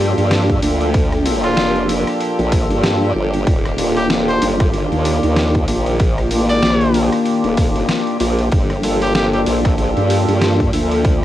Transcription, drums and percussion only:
0.18 open hi-hat
0.31 snare, open hi-hat
0.50 kick, open hi-hat
0.63 open hi-hat
0.81 open hi-hat
0.94 kick, open hi-hat
1.12 cross-stick, open hi-hat
1.26 open hi-hat
1.44 cross-stick, open hi-hat
1.57 snare, open hi-hat
1.76 open hi-hat
1.89 open hi-hat
2.07 cross-stick, open hi-hat
2.20 open hi-hat
2.39 open hi-hat
2.52 kick, open hi-hat
2.71 open hi-hat
2.84 snare, open hi-hat
3.02 open hi-hat
3.34 open hi-hat
3.47 kick, open hi-hat
3.65 cross-stick, open hi-hat
3.78 open hi-hat
3.97 cross-stick, open hi-hat
4.10 snare, open hi-hat
4.28 open hi-hat
4.42 open hi-hat
4.60 kick, cross-stick, open hi-hat
4.73 open hi-hat
4.92 open hi-hat
5.05 open hi-hat
5.23 open hi-hat
5.36 snare, open hi-hat
5.54 kick, open hi-hat
5.68 open hi-hat
5.86 open hi-hat
6.00 kick, open hi-hat
6.18 cross-stick, open hi-hat
6.31 open hi-hat
6.49 cross-stick, open hi-hat
6.63 snare
6.81 open hi-hat
6.94 open hi-hat
7.12 cross-stick, open hi-hat
7.26 open hi-hat
7.44 open hi-hat
7.57 kick, open hi-hat
7.76 open hi-hat
7.89 snare, open hi-hat
8.07 open hi-hat
8.20 open hi-hat
8.39 open hi-hat
8.52 kick, open hi-hat
8.70 cross-stick, open hi-hat
8.83 open hi-hat
9.02 cross-stick, open hi-hat
9.15 snare, open hi-hat
9.33 open hi-hat
9.47 open hi-hat
9.65 kick, cross-stick, open hi-hat
9.78 open hi-hat
9.97 open hi-hat
10.10 open hi-hat
10.28 open hi-hat
10.41 snare, open hi-hat
10.60 kick, open hi-hat
10.73 open hi-hat
10.91 open hi-hat
11.05 kick, open hi-hat

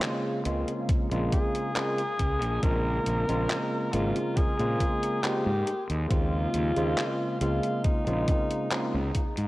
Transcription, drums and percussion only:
0.02 clap, closed hi-hat
0.45 closed hi-hat
0.68 closed hi-hat
0.89 kick, closed hi-hat
1.11 closed hi-hat
1.32 kick, closed hi-hat
1.55 closed hi-hat
1.76 clap, closed hi-hat
1.98 closed hi-hat
2.19 kick, closed hi-hat
2.42 closed hi-hat
2.63 kick, closed hi-hat
3.06 closed hi-hat
3.29 closed hi-hat
3.50 clap, closed hi-hat
3.93 closed hi-hat
4.16 closed hi-hat
4.37 kick, closed hi-hat
4.59 closed hi-hat
4.80 kick, closed hi-hat
5.03 closed hi-hat
5.24 clap, closed hi-hat
5.67 closed hi-hat
5.90 closed hi-hat
6.11 kick, closed hi-hat
6.54 closed hi-hat
6.76 closed hi-hat
6.98 clap, closed hi-hat
7.41 closed hi-hat
7.63 closed hi-hat
7.84 kick, closed hi-hat
8.07 closed hi-hat
8.28 kick, closed hi-hat
8.51 closed hi-hat
8.71 clap, closed hi-hat
9.15 kick, closed hi-hat
9.37 closed hi-hat

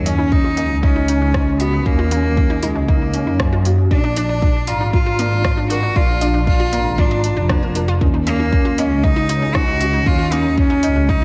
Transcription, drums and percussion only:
0.06 closed hi-hat
0.32 kick
0.57 closed hi-hat
0.83 kick
1.08 closed hi-hat
1.34 kick, cross-stick
1.60 closed hi-hat
1.86 kick
2.11 closed hi-hat
2.37 kick
2.63 closed hi-hat
2.88 kick
3.14 closed hi-hat
3.40 kick, cross-stick
3.65 closed hi-hat
3.91 kick
4.16 closed hi-hat
4.42 kick
4.67 closed hi-hat
4.93 kick
5.19 closed hi-hat
5.45 kick, cross-stick
5.70 closed hi-hat
5.96 kick
6.21 closed hi-hat
6.47 kick
6.73 closed hi-hat
6.98 kick
7.24 closed hi-hat
7.49 kick, cross-stick
7.75 closed hi-hat
8.01 kick
8.27 closed hi-hat
8.53 kick
8.78 closed hi-hat
9.04 kick
9.29 closed hi-hat
9.55 kick, cross-stick
9.81 closed hi-hat
10.06 kick
10.32 closed hi-hat
10.58 kick
10.83 closed hi-hat
11.09 kick

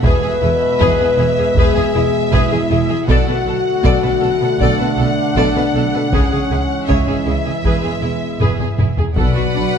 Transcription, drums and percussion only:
0.04 taiko
0.80 taiko
1.56 taiko
2.33 taiko
3.08 taiko
3.84 taiko
4.60 taiko
5.36 taiko
6.12 taiko
6.89 taiko
7.07 taiko low-mid
7.64 taiko
7.83 taiko low-mid
8.40 taiko low-mid
8.59 taiko low-mid
8.79 taiko low-mid
8.97 taiko low
9.16 taiko

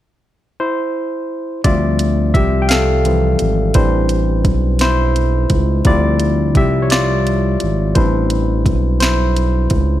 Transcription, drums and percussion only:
1.64 kick, closed hi-hat
1.99 closed hi-hat
2.34 kick, closed hi-hat
2.69 snare, closed hi-hat
3.05 closed hi-hat
3.39 closed hi-hat
3.74 kick, closed hi-hat
4.09 closed hi-hat
4.45 kick, closed hi-hat
4.79 snare, closed hi-hat
5.16 closed hi-hat
5.50 kick, closed hi-hat
5.85 kick, closed hi-hat
6.20 closed hi-hat
6.55 kick, closed hi-hat
6.90 snare, closed hi-hat
7.27 closed hi-hat
7.60 closed hi-hat
7.95 kick, closed hi-hat
8.30 closed hi-hat
8.66 kick, closed hi-hat
9.00 snare, closed hi-hat
9.37 closed hi-hat
9.70 kick, closed hi-hat

